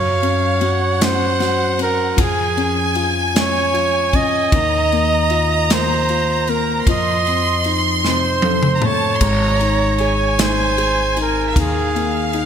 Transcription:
0.00 2.14 F#2 medium
0.00 0.60 F#3 medium
0.00 1.05 C#5 loud
0.00 0.62 F5 medium
0.22 0.99 C#4 medium
0.22 ride soft
0.61 1.39 F#3 medium
0.61 2.18 F#5 loud
0.61 ride soft
1.00 1.77 C#4 medium
1.00 1.81 C5 loud
1.00 snare loud
1.00 ride medium
1.40 2.16 F#3 medium
1.40 snare soft
1.40 ride soft
1.79 2.17 C#4 soft
1.79 2.22 A#4 loud
1.79 ride soft
2.17 4.49 F2 loud
2.17 4.48 F3 medium
2.17 4.52 G#5 loud
2.17 kick loud
2.17 ride medium
2.21 3.10 G#4 medium
2.57 3.33 C#4 medium
2.57 ride soft
2.95 3.72 F4 medium
2.95 ride soft
3.35 4.12 C#4 medium
3.35 4.17 C#5 loud
3.35 snare loud
3.35 ride medium
3.73 4.50 F4 medium
3.73 ride soft
4.13 4.52 C#4 medium
4.13 5.74 D#5 loud
4.13 kick medium
4.13 ride medium
4.52 6.83 D#2 loud
4.52 6.83 D#3 medium
4.52 6.87 A#5 loud
4.52 kick loud
4.52 ride medium
4.92 5.68 A#3 medium
4.92 ride soft
5.30 6.08 F4 medium
5.30 ride soft
5.70 6.47 A#3 medium
5.70 6.51 C5 loud
5.70 snare loud
5.70 ride medium
6.09 6.85 F4 medium
6.09 ride soft
6.47 6.86 A#3 medium
6.47 6.88 A#4 medium
6.47 ride soft
6.85 9.17 F2 medium
6.85 9.18 F3 medium
6.85 8.75 C6 loud
6.85 kick loud
6.85 ride medium
6.89 7.75 D#5 loud
7.27 8.79 C4 medium
7.27 ride soft
7.64 9.18 D#4 medium
7.64 ride soft
8.05 9.18 C3 medium
8.05 8.87 C5 medium
8.05 snare medium
8.42 9.19 A4 medium
8.42 high tom medium
8.63 mid tom medium
8.76 8.83 A#5 medium
8.82 9.20 A3 soft
8.82 10.43 C#5 loud
8.82 9.14 A5 loud
8.82 mid tom medium
9.15 9.22 C6 medium
9.21 11.52 G#1 loud
9.21 11.52 G#3 medium
9.21 10.00 A#5 loud
9.21 kick loud
9.21 crash medium
9.61 10.37 D#4 medium
9.61 ride soft
9.98 10.76 G#4 medium
9.98 11.45 G#5 loud
9.98 ride soft
10.39 11.15 D#4 medium
10.39 11.18 C5 loud
10.39 snare loud
10.39 ride medium
10.78 11.54 G#4 medium
10.78 ride soft
11.17 11.55 D#4 medium
11.17 ride soft
11.21 11.55 A#4 medium
11.48 11.56 E5 medium
11.56 12.46 D#2 loud
11.56 12.46 D#3 medium
11.56 12.46 F5 loud
11.56 kick loud
11.56 ride medium
11.60 12.44 G#4 loud
11.95 12.46 A#3 medium
11.95 ride soft
12.33 12.46 D#4 medium
12.33 ride soft

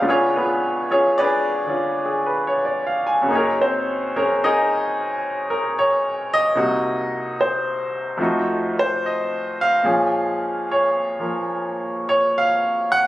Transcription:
0.00 3.28 C#2 soft
0.00 3.23 C#3 soft
0.00 0.35 B3 soft
0.00 1.19 D4 soft
0.00 0.07 F4 soft
0.00 0.11 F5 medium
0.09 0.32 C#4 medium
0.09 0.32 F4 medium
0.09 0.33 G#4 medium
0.09 0.33 C#5 medium
0.36 0.84 B3 soft
0.36 0.84 F4 soft
0.36 0.85 G#4 soft
0.36 0.84 B4 medium
0.91 1.15 C#4 soft
0.91 1.14 F4 soft
0.91 1.14 G#4 medium
0.91 1.15 C#5 medium
1.18 1.61 D4 medium
1.18 1.60 G#4 medium
1.18 1.60 B4 medium
1.18 1.59 D5 medium
1.66 3.29 D3 soft
1.66 3.29 C#4 soft
1.66 3.30 F4 soft
2.05 2.31 G#4 soft
2.26 2.55 B4 soft
2.47 2.86 C#5 medium
2.65 3.02 D5 soft
2.87 3.12 F5 medium
3.07 3.36 G#5 soft
3.22 6.51 F#2 medium
3.22 6.52 C#3 soft
3.28 6.54 A#3 soft
3.28 4.43 D#4 soft
3.32 3.58 C#4 medium
3.32 3.34 G#4 medium
3.32 3.58 G#4 medium
3.32 3.58 C#5 medium
3.37 3.59 A#4 medium
3.62 4.10 C4 medium
3.62 4.09 C5 medium
4.16 4.40 C#4 soft
4.16 4.40 G#4 medium
4.16 4.40 A#4 medium
4.16 4.39 C#5 medium
4.44 4.69 D#4 medium
4.44 4.70 G#4 medium
4.44 4.70 A#4 medium
4.44 4.69 D#5 medium
5.50 5.74 A#4 medium
5.79 6.30 C#5 medium
6.34 7.35 D#5 loud
6.55 8.19 C2 medium
6.55 8.19 C3 soft
6.55 8.19 A#3 soft
6.55 8.19 D#4 soft
6.55 8.20 F#4 medium
7.41 8.73 C5 medium
8.17 9.83 F2 medium
8.17 9.83 F3 soft
8.17 9.84 A3 soft
8.17 9.85 D#4 soft
8.22 9.85 F#4 medium
8.79 9.03 C5 medium
9.06 9.58 D#5 medium
9.61 10.64 F5 medium
9.83 13.07 A#2 soft
9.83 11.18 F3 soft
9.83 13.07 G#3 soft
9.83 13.07 C#4 soft
9.83 13.07 G#4 medium
10.71 12.04 C#5 medium
11.19 13.07 F3 soft
11.19 13.07 A#3 soft
12.09 12.32 C#5 medium
12.38 12.89 F5 medium
12.92 13.07 F#5 loud

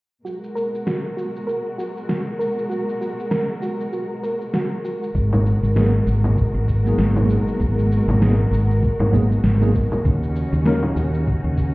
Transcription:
0.25 5.11 B2 medium
0.25 5.11 G#3 medium
0.25 0.41 F#4 medium
0.25 5.11 F#4 medium
0.25 5.11 A#4 medium
0.25 shaker soft
0.44 shaker soft
0.55 0.71 A#4 loud
0.55 shaker medium
0.75 shaker soft
0.86 1.02 F#4 medium
0.86 snare medium
0.86 shaker soft
1.17 1.33 F#4 medium
1.17 shaker medium
1.36 shaker soft
1.47 1.63 A#4 medium
1.47 shaker soft
1.78 1.94 F#4 medium
1.78 shaker medium
1.97 shaker soft
2.09 2.25 F#4 medium
2.09 snare medium
2.09 shaker soft
2.39 2.55 A#4 medium
2.39 shaker medium
2.59 shaker soft
2.69 2.86 F#4 medium
2.69 shaker soft
2.89 shaker soft
3.01 3.17 F#4 medium
3.01 shaker medium
3.20 shaker soft
3.31 3.47 A#4 medium
3.31 snare loud
3.31 shaker soft
3.62 3.78 F#4 medium
3.62 shaker medium
3.80 shaker soft
3.93 4.09 F#4 medium
3.93 shaker soft
4.23 4.39 A#4 loud
4.23 shaker medium
4.41 shaker soft
4.54 4.70 F#4 medium
4.54 snare medium
4.54 shaker soft
4.85 5.00 F#4 medium
4.85 shaker medium
5.03 shaker soft
5.15 5.54 G#1 medium
5.15 10.01 B2 medium
5.15 10.01 G#3 medium
5.15 10.01 F#4 medium
5.15 10.01 A#4 medium
5.15 kick loud
5.15 shaker soft
5.33 low conga medium
5.33 shaker soft
5.46 shaker medium
5.63 6.00 G#1 medium
5.63 shaker soft
5.75 5.90 F#3 medium
5.75 5.90 A#3 medium
5.75 5.90 B3 medium
5.75 5.90 D#4 medium
5.75 5.90 G#4 medium
5.75 snare loud
5.75 shaker soft
6.07 6.46 G#1 medium
6.07 shaker medium
6.24 low conga medium
6.24 shaker soft
6.38 kick loud
6.38 shaker soft
6.54 6.92 G#1 medium
6.68 kick medium
6.68 shaker medium
6.85 8.17 F#3 medium
6.85 8.18 A#3 medium
6.85 8.18 B3 medium
6.85 8.19 D#4 medium
6.85 8.19 G#4 medium
6.85 shaker soft
6.98 7.37 G#1 medium
6.98 snare medium
6.98 shaker soft
7.16 low conga medium
7.16 shaker soft
7.30 shaker medium
7.48 shaker soft
7.60 7.99 G#1 loud
7.60 kick loud
7.60 shaker soft
7.79 shaker soft
7.92 shaker medium
8.08 8.45 G#1 medium
8.08 low conga medium
8.08 shaker soft
8.20 8.34 F#3 medium
8.20 8.35 A#3 medium
8.20 8.35 B3 medium
8.20 8.35 D#4 medium
8.20 8.36 G#4 medium
8.20 snare medium
8.20 shaker soft
8.51 8.90 G#1 medium
8.51 shaker medium
8.71 shaker soft
8.83 kick loud
8.83 shaker soft
8.99 9.36 G#1 medium
8.99 low conga medium
9.12 9.26 F#3 medium
9.12 9.26 A#3 medium
9.12 9.27 B3 medium
9.12 9.27 D#4 medium
9.12 9.27 G#4 medium
9.12 kick medium
9.12 shaker medium
9.32 shaker soft
9.44 9.83 G#1 medium
9.44 snare medium
9.44 shaker soft
9.60 9.71 F#3 medium
9.60 9.71 A#3 medium
9.60 9.71 B3 medium
9.60 9.72 D#4 medium
9.60 9.72 G#4 medium
9.60 shaker soft
9.75 kick loud
9.75 shaker medium
9.92 low conga medium
9.92 shaker soft
10.04 10.44 D#2 medium
10.04 11.74 C#3 medium
10.04 11.74 C#4 medium
10.04 11.74 D#4 medium
10.04 11.74 F#4 medium
10.04 kick loud
10.04 shaker soft
10.23 shaker soft
10.36 shaker medium
10.53 10.90 D#2 medium
10.53 shaker soft
10.65 10.79 F#3 medium
10.65 10.80 A#3 medium
10.65 10.80 C#4 medium
10.65 10.80 D#4 medium
10.65 10.80 A#4 loud
10.65 snare medium
10.65 shaker soft
10.83 low conga medium
10.96 11.35 D#2 medium
10.96 shaker medium
11.14 shaker soft
11.27 kick loud
11.27 shaker soft
11.44 11.74 D#2 medium
11.58 kick medium
11.58 shaker medium

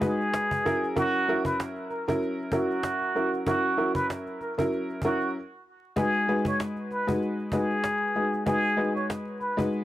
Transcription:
0.01 0.64 G#3 medium
0.01 0.65 D#4 medium
0.01 0.65 F#4 medium
0.01 0.93 G#4 medium
0.01 0.65 B4 loud
0.01 cajon bass medium
0.21 cajon slap soft
0.34 cajon slap loud
0.51 cajon bass medium
0.65 0.94 F#3 medium
0.65 0.94 C#4 medium
0.65 0.95 E4 medium
0.65 0.95 A#4 loud
0.65 cajon bass medium
0.84 cajon slap soft
0.95 1.25 F#3 medium
0.95 1.25 C#4 medium
0.95 1.25 E4 medium
0.95 1.43 F#4 loud
0.95 1.26 A#4 loud
0.95 cajon bass loud
1.14 cajon slap soft
1.28 2.01 F#3 loud
1.28 2.01 C#4 medium
1.28 2.01 E4 medium
1.28 2.02 A#4 loud
1.28 cajon slap soft
1.45 1.58 B4 medium
1.45 cajon bass loud
1.60 cajon slap loud
1.76 cajon slap soft
1.89 2.06 A#4 medium
1.89 cajon slap soft
2.08 2.49 F#3 medium
2.08 2.50 C#4 medium
2.08 2.50 E4 medium
2.08 2.50 A#4 loud
2.08 cajon bass medium
2.22 cajon slap soft
2.40 cajon slap soft
2.52 3.11 F#3 medium
2.52 3.11 C#4 medium
2.52 3.11 E4 medium
2.52 3.42 F#4 medium
2.52 3.11 A#4 loud
2.52 cajon bass medium
2.71 cajon slap soft
2.83 cajon slap loud
3.02 cajon slap soft
3.15 3.44 F#3 medium
3.15 3.44 C#4 medium
3.15 3.45 E4 medium
3.15 3.45 A#4 medium
3.15 cajon slap soft
3.34 cajon slap soft
3.46 3.76 F#3 medium
3.46 3.76 C#4 medium
3.46 3.76 E4 medium
3.46 3.92 F#4 loud
3.46 3.76 A#4 loud
3.46 cajon bass loud
3.77 4.51 F#3 medium
3.77 4.51 C#4 medium
3.77 4.51 E4 medium
3.77 4.51 A#4 loud
3.77 cajon slap soft
3.95 4.07 B4 medium
3.95 cajon bass loud
4.10 cajon slap loud
4.26 cajon slap soft
4.41 4.56 A#4 medium
4.41 cajon slap soft
4.58 4.99 F#3 medium
4.58 5.00 C#4 medium
4.58 5.00 E4 medium
4.58 5.00 A#4 loud
4.58 cajon bass medium
4.72 cajon slap soft
4.90 cajon slap soft
5.02 5.35 F#3 medium
5.02 5.35 C#4 medium
5.02 5.35 E4 medium
5.02 5.33 F#4 medium
5.02 5.35 A#4 loud
5.02 cajon bass medium
5.21 cajon slap soft
5.96 6.25 G#3 loud
5.96 6.26 D#4 medium
5.96 6.26 F#4 medium
5.96 6.43 G#4 loud
5.96 6.26 B4 loud
5.96 cajon bass loud
6.15 cajon slap soft
6.28 7.01 G#3 medium
6.28 7.01 D#4 medium
6.28 7.01 F#4 medium
6.28 7.01 B4 loud
6.28 cajon slap soft
6.45 6.59 C#5 medium
6.45 cajon bass loud
6.60 cajon slap loud
6.76 cajon slap soft
6.91 7.07 B4 medium
6.91 cajon slap soft
7.07 7.49 G#3 medium
7.07 7.49 D#4 medium
7.07 7.50 F#4 medium
7.07 7.50 B4 loud
7.07 cajon bass medium
7.22 cajon slap soft
7.40 cajon slap soft
7.52 8.11 G#3 medium
7.52 8.11 D#4 medium
7.52 8.11 F#4 medium
7.52 8.43 G#4 medium
7.52 8.11 B4 loud
7.52 cajon bass medium
7.71 cajon slap soft
7.84 cajon slap loud
8.02 cajon slap soft
8.15 8.44 G#3 medium
8.15 8.45 D#4 medium
8.15 8.45 F#4 medium
8.15 8.45 B4 medium
8.15 cajon slap soft
8.34 cajon slap soft
8.46 8.75 G#3 loud
8.46 8.76 D#4 medium
8.46 8.76 F#4 medium
8.46 8.93 G#4 loud
8.46 8.76 B4 loud
8.46 cajon bass loud
8.64 cajon slap soft
8.77 9.50 G#3 medium
8.77 9.51 D#4 medium
8.77 9.51 F#4 medium
8.77 9.51 B4 loud
8.77 cajon slap soft
8.95 9.08 C#5 medium
8.95 cajon slap soft
9.10 cajon slap loud
9.26 cajon slap soft
9.41 9.56 B4 medium
9.41 cajon slap soft
9.57 9.84 G#3 medium
9.57 9.84 D#4 medium
9.57 9.84 F#4 medium
9.57 9.84 B4 loud
9.57 cajon bass medium
9.72 cajon slap soft

